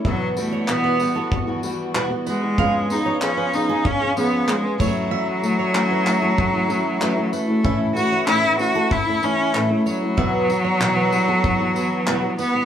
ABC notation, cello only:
X:1
M:4/4
L:1/8
Q:1/4=95
K:Edor
V:1 name="Cello"
F, A, B,2 z3 ^G,- | ^G, ^D C D C B, G, F,- | F,6- F, A,- | A, F E F E C A, F,- |
F,6- F, B, |]